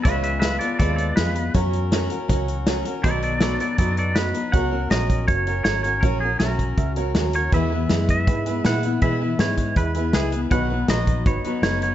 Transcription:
<<
  \new Staff \with { instrumentName = "Clean electric guitar" } { \time 4/4 \key fis \mixolydian \tempo 4 = 160 <b' e''>8 <b' e''>8 <b' e''>8 <a' d''>8 <a' d''>8 <a' d''>8 b'4 | r1 | <a' d''>8 <a' d''>8 <a' d''>8 <a' d''>8 <a' d''>8 <a' d''>8 b'4 | fis''4 dis''4 cis''4 cis''8 cis''8 |
ais'8 gis'8 ais'4. r4 cis''8 | e''4. e''4. fis''4 | e''4 cis''4 b'4 gis'8. r16 | fis''4 dis''4 cis''4 cis''8 cis''8 | }
  \new Staff \with { instrumentName = "Honky-tonk piano" } { \time 4/4 \key fis \mixolydian <eis' b' cis''>8 r8 <eis' b' dis''>8 r8 <eis' b' cis''>8 r8 <eis' b' dis''>8 r8 | <fis' ais' cis''>8 r8 <fis' ais' cis''>8 r8 <fis' ais' cis''>8 r8 <fis' ais' cis''>8 r8 | <fis' b' dis''>8 r8 <fis' b' cis''>8 r8 <fis' b' dis''>8 r8 <fis' b' dis''>8 r8 | <fis' ais' cis''>8 r8 <fis' ais' cis''>8 r8 <fis' ais' cis''>8 <fis' ais' cis''>8 <fis' ais' cis''>8 r8 |
<fis' ais' cis''>8 r8 <fis' ais' e''>8 r8 <fis' ais' e''>8 <fis' ais' cis''>8 <fis' ais' cis''>8 r8 | <e' gis' b'>8 r8 <e' gis' b'>8 r8 <e' gis' b'>8 <e' gis' b'>8 <e' gis' b'>8 r8 | <e' gis' b'>8 r8 <e' gis' b'>8 r8 <e' gis' b'>8 <e' gis' b'>8 <e' gis' b'>8 r8 | <dis' fis' b'>8 r8 <dis' fis' b'>8 r8 <dis' fis' b'>8 <dis' fis' b'>8 <dis' fis' b'>8 r8 | }
  \new Staff \with { instrumentName = "Steel-string acoustic guitar" } { \time 4/4 \key fis \mixolydian <cis gis b eis' b'>4 <gis b eis' b'>8 <b eis' b'>8 <gis b eis' b'>4 <gis b eis' b'>8 <b eis' b'>8 | <fis cis' fis' ais'>4 <fis cis' fis' ais'>8 <cis' fis' ais'>8 <fis cis' fis' ais'>4 <fis cis' fis' ais'>8 <cis' fis' ais'>8 | <b, dis fis b dis' b'>4 <fis b dis' b'>8 <fis b dis' b'>8 <fis b dis' b'>4 <fis b dis' b'>8 <fis b dis' b'>8 | <fis cis' fis' ais'>8 <cis' fis' ais'>8 <fis cis' fis' ais'>4. <cis' fis' ais'>8 <fis cis' fis' ais'>8 <cis' fis' ais'>8 |
<fis cis' fis' ais'>8 <cis' fis' ais'>8 <fis cis' fis' ais'>4. <cis' fis' ais'>8 <fis cis' fis' ais'>8 <cis' fis' ais'>8 | <e gis b e' b'>8 <b e' b'>8 <gis b e' b'>4. <b e' b'>8 <gis b e' b'>8 <b e' b'>8 | <e gis b e' b'>8 <b e' b'>8 <gis b e' b'>4. <b e' b'>8 <gis b e' b'>8 <b e' b'>8 | <b, dis fis b dis' b'>8 <fis b dis' b'>8 <fis b dis' b'>4. <fis b dis' b'>8 <fis b dis' b'>8 <fis b dis' b'>8 | }
  \new Staff \with { instrumentName = "Fingered electric bass" } { \clef bass \time 4/4 \key fis \mixolydian cis,2 dis,4 eis,4 | fis,2 cis,2 | b,,2 fis,2 | cis,4 ais,,4 fis,,4 gis,,4 |
ais,,4 b,,4 cis,4 dis,4 | e,4 fis,4 gis,4 ais,4 | b,4 gis,4 e,4 cis,4 | b,,4 ais,,4 gis,,8 r8 fis,,4 | }
  \new DrumStaff \with { instrumentName = "Drums" } \drummode { \time 4/4 <hh bd>8 hh8 <hh sn>8 hh8 <hh bd>8 hh8 <hh sn>8 hh8 | <hh bd>8 hh8 <hh sn>8 hh8 <hh bd>8 hh8 <hh sn>8 hh8 | <hh bd>8 hh8 <hh sn>8 hh8 <hh bd>8 hh8 <hh sn>8 hh8 | <hh bd>4 <hh sn>8 <hh bd>8 <hh bd>8 hh8 <hh sn>8 hh8 |
<hh bd>4 <hh sn>8 <hh bd>8 <hh bd>8 hh8 <hh sn>8 hh8 | <hh bd>4 <hh sn>8 <hh bd>8 <hh bd>8 hh8 <hh sn>8 hh8 | <hh bd>4 <hh sn>8 <hh bd>8 <hh bd>8 hh8 <hh sn>8 hh8 | <hh bd>4 <hh sn>8 <hh bd>8 <hh bd>8 hh8 <hh sn>8 hh8 | }
>>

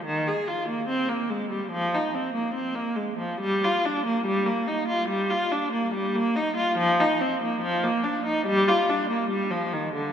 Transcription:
\new Staff \with { instrumentName = "Viola" } { \time 4/4 \key ees \major \tempo 4 = 72 ees16 aes'16 f'16 bes16 c'16 bes16 aes16 g16 f16 ees'16 c'16 bes16 c'16 bes16 aes16 f16 | g16 f'16 d'16 bes16 g16 bes16 ees'16 f'16 g16 f'16 d'16 bes16 g16 bes16 ees'16 f'16 | f16 ees'16 c'16 bes16 f16 bes16 d'16 ees'16 g16 f'16 d'16 bes16 g16 f16 ees16 d16 | }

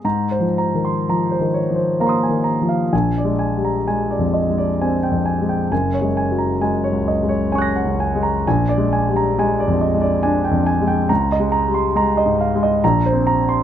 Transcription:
<<
  \new Staff \with { instrumentName = "Grand piano" } { \time 3/4 \key aes \major \tempo 4 = 66 << { r2 <f'' bes'' c''' ees'''>4 | r2. | r2 <des''' ges''' bes'''>4 | r2. |
r2. | } \\ { bes''16 c''16 bes''16 c'''16 bes''16 c''16 des''16 c''16 bes''16 aes''16 bes''16 f''16 | aes''16 d''16 aes''16 bes''16 aes''16 d''16 ees''16 d''16 aes''16 g''16 aes''16 g''16 | aes''16 des''16 aes''16 bes''16 aes''16 des''16 ees''16 des''16 aes''16 ges''16 aes''16 bes''16 | aes''16 d''16 aes''16 bes''16 aes''16 d''16 ees''16 d''16 aes''16 g''16 aes''16 g''16 |
bes''16 ees''16 bes''16 c'''16 bes''16 ees''16 f''16 ees''16 bes''16 c''16 bes''16 c'''16 | } >> }
  \new Staff \with { instrumentName = "Grand piano" } { \clef bass \time 3/4 \key aes \major \tuplet 3/2 { aes,8 f8 ees8 f8 ees8 f8 bes8 ees8 f8 } | \tuplet 3/2 { bes,,8 aes8 g8 aes8 f,8 aes8 c'8 f,8 aes8 } | \tuplet 3/2 { ges,,8 aes8 ges8 aes8 des,8 aes8 des'8 des,8 aes8 } | \tuplet 3/2 { bes,,8 aes8 g8 aes8 f,8 aes8 d'8 f,8 aes8 } |
\tuplet 3/2 { des,8 aes8 g8 aes8 aes,8 aes8 bes,,8 c'4 } | }
>>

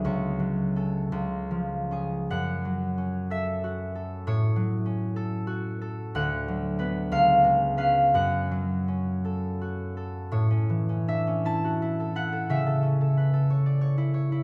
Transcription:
\new Staff \with { instrumentName = "Harp" } { \time 6/8 \key fis \minor \tempo 4. = 59 << { <cis'' fis''>2. | fis''4. e''4. | cis''2. | fis''4. eis''4 eis''8 |
fis''2. | \key a \major cis''4 e''8 a''4 fis''8 | e''2. | } \\ { <cis, fis fis'>8 fis8 <cis' a'>8 cis,8 eis8 <cis' gis'>8 | fis,8 fis8 cis'8 a'8 fis'8 a'8 | a,8 fis8 cis'8 a'8 fis'8 a'8 | d,8 fis8 <b b'>8 cis,8 gis8 <cis' b'>8 |
fis,8 fis8 cis'8 a'8 fis'8 a'8 | a,16 cis'16 e16 cis'16 d'16 cis'16 e'16 fis'16 e'16 a'16 e'16 a'16 | cis16 a'16 cis'16 a'16 b'16 a'16 cis''16 d''16 cis''16 e'16 cis''16 e'16 | } >> }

